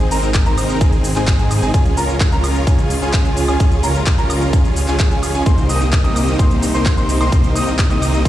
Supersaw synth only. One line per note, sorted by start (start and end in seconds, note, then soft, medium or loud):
0.11 0.28 C4 loud
0.11 0.28 D#4 medium
0.11 0.28 A#4 loud
0.46 0.78 C4 loud
0.46 0.78 D#4 medium
0.46 0.78 A#4 loud
0.81 1.08 C4 medium
0.81 1.08 D#4 medium
0.81 1.08 G#4 loud
1.16 1.36 C4 medium
1.16 1.36 D#4 medium
1.16 1.36 G#4 loud
1.39 1.60 C4 medium
1.39 1.60 D#4 medium
1.39 1.60 G#4 loud
1.62 1.71 C4 medium
1.62 1.71 D#4 medium
1.62 1.71 G#4 loud
1.74 1.95 C#4 medium
1.74 1.95 F4 medium
1.74 1.95 G#4 loud
1.97 2.14 C#4 medium
1.97 2.14 F4 medium
1.97 2.14 A#4 loud
2.32 2.64 C#4 loud
2.32 2.64 F4 loud
2.32 2.64 A#4 loud
2.67 2.94 C#4 medium
2.67 2.94 F4 medium
2.67 2.94 G#4 loud
3.02 3.22 C#4 medium
3.02 3.23 F4 medium
3.02 3.22 G#4 loud
3.25 3.46 C#4 medium
3.25 3.46 F4 medium
3.25 3.46 G#4 loud
3.48 3.57 C#4 medium
3.48 3.57 F4 medium
3.48 3.57 G#4 loud
3.60 3.81 C#4 loud
3.60 3.81 F4 medium
3.60 3.81 G#4 loud
3.83 4.00 C#4 loud
3.83 4.00 F4 medium
3.83 4.00 A#4 loud
4.18 4.50 C#4 loud
4.18 4.50 F4 medium
4.18 4.50 A#4 loud
4.53 4.80 C#4 medium
4.53 4.80 F4 medium
4.53 4.80 G#4 loud
4.88 5.09 C#4 medium
4.88 5.09 F4 medium
4.88 5.09 G#4 medium
5.11 5.32 C#4 medium
5.11 5.32 F4 medium
5.11 5.32 G#4 loud
5.35 5.43 C#4 medium
5.35 5.43 F4 medium
5.35 5.43 G#4 loud
5.46 5.67 A#3 loud
5.46 5.67 C4 medium
5.46 5.67 D#4 medium
5.46 5.67 G4 medium
5.46 5.67 C5 loud
5.69 5.86 A#3 loud
5.69 5.86 C4 medium
5.69 5.86 D#4 medium
5.69 5.86 G4 medium
5.69 5.86 D#5 loud
6.04 6.37 A#3 loud
6.04 6.36 C4 medium
6.04 6.36 D#4 medium
6.04 6.37 G4 loud
6.04 6.36 D#5 loud
6.39 6.66 A#3 medium
6.39 6.66 C4 medium
6.39 6.66 D#4 medium
6.39 6.66 G4 medium
6.39 6.66 C5 loud
6.74 6.95 A#3 medium
6.74 6.95 C4 medium
6.74 6.95 D#4 medium
6.74 6.95 G4 medium
6.74 6.95 C5 loud
6.97 7.18 A#3 medium
6.97 7.18 C4 medium
6.97 7.18 D#4 medium
6.97 7.18 G4 medium
6.97 7.18 C5 loud
7.21 7.30 A#3 loud
7.21 7.30 C4 medium
7.21 7.30 D#4 medium
7.21 7.30 G4 medium
7.21 7.30 C5 loud
7.32 7.53 A#3 medium
7.32 7.53 C4 medium
7.32 7.53 D#4 medium
7.32 7.53 G4 medium
7.32 7.53 C5 loud
7.56 7.72 A#3 loud
7.56 7.72 C4 medium
7.56 7.72 D#4 medium
7.56 7.72 G4 medium
7.56 7.72 D#5 loud
7.90 8.23 A#3 loud
7.90 8.22 C4 medium
7.90 8.22 D#4 medium
7.90 8.23 G4 medium
7.90 8.23 D#5 loud
8.25 8.29 A#3 medium
8.25 8.29 C4 medium
8.25 8.29 D#4 medium
8.25 8.29 G4 medium
8.25 8.29 C5 loud